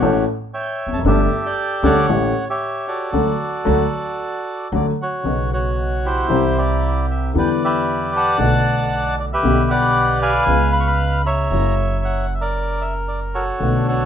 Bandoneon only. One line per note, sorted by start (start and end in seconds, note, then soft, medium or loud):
0.00 0.25 F#4 soft
0.00 0.24 G4 soft
0.00 0.24 C#5 medium
0.54 1.02 C#5 medium
0.54 1.02 E5 medium
0.54 0.90 G5 medium
0.94 0.99 A5 medium
1.07 2.06 G4 medium
1.07 2.06 A4 medium
1.07 1.46 E5 medium
1.45 2.06 D5 medium
1.45 1.85 G5 medium
1.84 2.48 C#5 medium
1.84 2.45 F#5 loud
2.50 3.10 G4 medium
2.50 3.10 C#5 soft
2.50 2.86 E5 medium
2.88 4.68 F#4 soft
2.88 4.69 A4 medium
2.88 4.68 D5 medium
4.75 4.87 D5 medium
5.01 5.51 F#4 soft
5.01 5.50 C#5 medium
5.53 6.27 F#4 soft
5.53 6.07 C#5 medium
6.05 7.06 E4 medium
6.05 6.57 G4 medium
6.05 6.59 C5 medium
6.58 7.32 G4 medium
6.58 7.06 D5 medium
7.11 7.34 E5 medium
7.38 7.64 B4 medium
7.38 8.15 D5 medium
7.38 7.49 G5 medium
7.64 8.37 G4 medium
7.64 8.37 B4 medium
7.64 8.11 E5 medium
8.16 9.15 D5 medium
8.16 9.15 F#5 medium
8.16 9.15 A5 loud
9.20 9.25 D5 medium
9.33 10.32 G4 medium
9.33 9.69 B4 medium
9.33 9.72 E5 loud
9.70 10.21 B4 medium
9.70 10.44 D5 medium
9.70 10.18 F#5 loud
10.22 11.22 B4 medium
10.22 11.22 F5 medium
10.22 10.70 G#5 loud
10.72 10.80 B5 medium
10.80 10.87 C#6 medium
10.87 11.27 B5 loud
11.26 12.26 C#5 medium
11.26 12.26 E5 medium
11.26 11.74 A#5 medium
12.05 12.34 F#5 medium
12.35 12.42 E5 medium
12.41 13.43 A#4 medium
12.41 12.82 D5 medium
12.81 12.93 E5 medium
13.08 13.20 D5 medium
13.34 13.87 F#4 soft
13.34 13.87 A4 soft
13.34 13.87 C#5 medium
13.88 14.05 F#4 medium
13.88 14.05 A4 medium
13.88 14.05 C#5 medium